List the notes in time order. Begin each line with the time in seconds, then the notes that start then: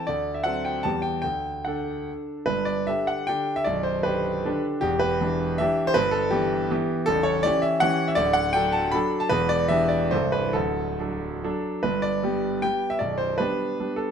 0.07 D2 D5
0.34 E5
0.44 F#3 C4 A4 F#5
0.65 G5
0.83 E2 G3 B3 G4 A5
1.02 G5
1.22 D2 G5
1.65 D3 D4 A4 F#5
2.46 G1 G2 B4
2.65 D5
2.87 D3 D4 G4 E5
3.07 F#5
3.27 D3 D4 G4 G5
3.56 E5
3.64 B0 B1 D5
3.83 C5
4.03 D3 D4 G4 B4
4.45 D3 D4 G4
4.81 E1 E2 G4
5.00 B4
5.21 E3 D4 G4
5.58 E3 D4 G4 E5
5.87 C5
5.94 G1 G2 B4
6.11 A4
6.31 E3 B3 G4
6.71 E3 B3 G4
7.06 A0 A1 A4
7.23 C#5
7.43 E3 C#4 G4 D5
7.62 E5
7.80 E3 C#4 G4 F#5
8.08 E5
8.15 D1 D2 D5
8.33 F#5
8.53 F#3 D4 A4 G5
8.72 A5
8.92 F#3 D4 A4 B5
9.20 A5
9.29 E1 E2 B4
9.49 D5
9.68 E3 D4 G4 E5
9.89 D5
10.11 C1 C2 E3 E4 A4 C5
10.32 B4
10.53 D1 D2 A4
11.00 F#3 D4 A4
11.43 F#3 D4 A4
11.83 G1 G2 B4
12.02 D5
12.23 G3 B3 G4
12.62 G3 B3 G4 G5
12.90 E5
12.99 B0 B1 D5
13.18 C5
13.38 G3 B3 D4 B4
13.80 G3 B3 D4
13.96 A4